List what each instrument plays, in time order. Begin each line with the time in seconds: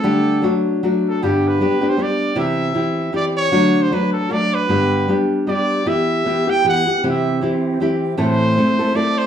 Already playing: trumpet A4
0.03 nylon-string guitar D3 G3 A3 D4 G4
0.42 nylon-string guitar F#3 A3 D4 F#4
0.83 nylon-string guitar F#3 A3 D4 F#4
1.08 trumpet A4
1.23 nylon-string guitar G2 D3 G3 B3 D4 G4, trumpet G4
1.48 trumpet B4
1.61 nylon-string guitar G3 B3 D4 G4
1.81 nylon-string guitar G3 B3 D4 G4
1.89 trumpet C5
1.97 nylon-string guitar G3 B3 D4 G4
2.03 trumpet D5
2.35 nylon-string guitar C3 E3 C4 E4 G4
2.40 trumpet E5
2.74 nylon-string guitar E3 C4 E4 G4
3.13 nylon-string guitar E3 C4 E4 G4, trumpet D5
3.37 trumpet C#5
3.51 nylon-string guitar D3 F#3 A3 D4 F#4
3.83 trumpet C5
3.91 nylon-string guitar F#3 A3 D4 F#4, trumpet B4
4.13 trumpet A4
4.30 nylon-string guitar F#3 A3 D4 F#4, trumpet D5
4.54 trumpet B4
4.69 nylon-string guitar G2 D3 G3 B3 D4 G4
5.08 nylon-string guitar G3 B3 D4 G4
5.47 nylon-string guitar G3 B3 D4 G4, trumpet D5
5.85 nylon-string guitar E3 B3 E4 G4, flute section E4 G4 B4, trumpet E5
6.26 nylon-string guitar E3 B3 E4 G4
6.47 nylon-string guitar B3 E4 G4, trumpet G5
6.64 nylon-string guitar E3 B3 E4 G4
6.69 trumpet F#5
6.87 nylon-string guitar B3 E4 G4
7.03 nylon-string guitar C3 E3 C4 E4 G4, flute section C4 G4 E5
7.11 trumpet E5
7.41 nylon-string guitar E3 C4 E4 G4
7.80 nylon-string guitar E3 C4 E4 G4
8.17 nylon-string guitar A2 E3 A3 C4 E4 A4, flute section E4 A4 C5, trumpet C5
8.58 nylon-string guitar A3 C4 E4 A4
8.79 nylon-string guitar A3 C4 E4 A4
8.95 nylon-string guitar A3 C4 E4 A4, trumpet D5
9.18 trumpet C5